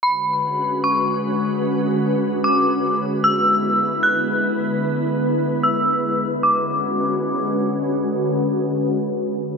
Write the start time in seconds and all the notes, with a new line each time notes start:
0.03 D3 G#3 C#4 F#4 B4 B5
0.84 C#6
2.44 D6
3.23 D3 B3 E4 B4 E6
4.03 F#6
5.63 E6
6.43 D3 G#3 C#4 F#4 B4 D6